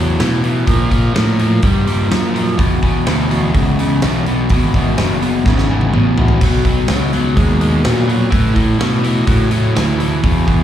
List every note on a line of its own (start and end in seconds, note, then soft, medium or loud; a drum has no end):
0.00 0.19 E2 medium
0.00 0.17 A2 medium
0.00 0.17 F#3 medium
0.19 0.41 A2 medium
0.19 0.66 B2 medium
0.19 0.41 E3 loud
0.19 snare loud
0.19 open hi-hat medium
0.43 0.65 A2 medium
0.43 0.65 E3 medium
0.43 open hi-hat medium
0.66 0.88 A#2 medium
0.66 1.14 A#2 medium
0.66 0.89 F3 medium
0.66 kick loud
0.66 open hi-hat medium
0.90 1.12 A#2 medium
0.90 1.12 F3 medium
0.90 kick medium
0.90 open hi-hat medium
1.14 1.62 A2 medium
1.14 1.36 A#2 medium
1.14 1.36 F3 medium
1.14 snare loud
1.14 open hi-hat medium
1.39 1.60 A#2 medium
1.39 1.61 F3 medium
1.39 open hi-hat medium
1.62 2.09 G2 medium
1.62 1.84 A#2 medium
1.62 1.85 G3 medium
1.62 kick loud
1.62 open hi-hat medium
1.86 2.08 A#2 medium
1.86 2.09 G3 medium
1.86 open hi-hat medium
2.11 2.58 F#2 medium
2.11 2.32 A#2 medium
2.11 2.32 F3 medium
2.11 snare loud
2.11 open hi-hat medium
2.34 2.56 A#2 medium
2.34 2.56 F3 medium
2.34 open hi-hat medium
2.58 2.80 E2 medium
2.58 2.81 E2 medium
2.58 2.80 B2 medium
2.58 kick loud
2.58 open hi-hat medium
2.82 3.04 E2 medium
2.82 3.04 B2 medium
2.82 muted fingered electric bass stroke soft
2.82 kick medium
2.82 open hi-hat soft
3.06 3.54 D2 medium
3.06 3.28 E2 medium
3.06 3.28 B2 medium
3.06 snare loud
3.06 open hi-hat medium
3.30 3.52 E2 medium
3.30 3.52 B2 medium
3.30 open hi-hat medium
3.54 4.01 C#2 medium
3.54 3.76 E2 medium
3.54 3.76 C#3 medium
3.54 kick loud
3.54 open hi-hat medium
3.79 4.00 E2 medium
3.79 4.00 C#3 medium
3.79 open hi-hat medium
4.02 4.50 B1 medium
4.02 4.24 E2 medium
4.02 4.24 B2 medium
4.02 snare loud
4.02 open hi-hat medium
4.26 4.48 E2 medium
4.26 4.48 B2 medium
4.26 open hi-hat medium
4.49 4.96 G#1 medium
4.49 4.72 E2 medium
4.49 4.72 B2 medium
4.49 kick loud
4.49 open hi-hat medium
4.74 4.96 E2 medium
4.74 4.96 B2 medium
4.74 kick medium
4.74 open hi-hat medium
4.97 5.45 F#1 medium
4.97 5.19 E2 medium
4.97 5.20 B2 medium
4.97 snare loud
4.97 open hi-hat medium
5.22 5.43 E2 medium
5.22 5.43 B2 medium
5.22 open hi-hat medium
5.46 5.93 G#1 medium
5.46 5.67 E2 medium
5.46 5.67 C#3 medium
5.46 kick loud
5.46 snare medium
5.58 snare medium
5.70 5.92 E2 medium
5.70 5.92 C#3 medium
5.81 high tom medium
5.93 6.40 A1 medium
5.93 6.15 E2 medium
5.93 6.16 B2 medium
5.93 mid tom medium
6.18 6.39 E2 medium
6.18 6.39 B2 medium
6.18 floor tom medium
6.28 floor tom medium
6.41 6.88 B1 medium
6.41 6.63 B2 medium
6.41 6.64 F#3 medium
6.41 kick loud
6.41 open hi-hat medium
6.41 splash medium
6.65 6.87 B2 medium
6.65 6.87 F#3 medium
6.65 kick medium
6.65 open hi-hat medium
6.88 7.36 C#2 medium
6.88 7.11 B2 medium
6.88 7.11 F#3 medium
6.88 snare loud
6.88 open hi-hat medium
7.13 7.34 B2 medium
7.13 7.35 F#3 medium
7.13 open hi-hat medium
7.36 7.83 D#2 medium
7.36 7.58 B2 medium
7.36 7.58 G#3 medium
7.36 kick loud
7.36 open hi-hat medium
7.60 7.82 B2 medium
7.60 7.83 G#3 medium
7.60 open hi-hat medium
7.84 8.32 A#2 medium
7.84 8.06 B2 medium
7.84 8.06 F#3 loud
7.84 snare loud
7.84 open hi-hat medium
8.08 8.30 B2 medium
8.08 8.30 F#3 medium
8.08 open hi-hat soft
8.30 8.53 A2 medium
8.30 8.79 A2 medium
8.30 8.53 E3 medium
8.30 kick loud
8.30 open hi-hat medium
8.55 8.77 A2 medium
8.55 8.77 E3 medium
8.55 kick medium
8.55 open hi-hat medium
8.79 9.01 A2 medium
8.79 9.27 B2 medium
8.79 9.02 E3 medium
8.79 snare loud
8.79 open hi-hat medium
9.03 9.25 A2 medium
9.03 9.26 E3 medium
9.03 open hi-hat medium
9.27 9.49 A2 medium
9.27 9.75 A2 medium
9.27 9.49 F#3 medium
9.27 kick loud
9.27 open hi-hat medium
9.51 9.73 A2 medium
9.51 9.73 F#3 medium
9.51 open hi-hat medium
9.75 10.23 D2 medium
9.75 9.97 A2 medium
9.75 9.97 E3 medium
9.75 snare loud
9.75 open hi-hat medium
9.99 10.21 A2 medium
9.99 10.21 E3 medium
9.99 open hi-hat medium
10.24 10.63 E2 medium
10.24 10.45 E2 medium
10.24 10.46 B2 medium
10.24 kick loud
10.24 open hi-hat medium
10.47 10.63 E2 medium
10.47 10.63 B2 medium
10.47 kick medium
10.47 open hi-hat soft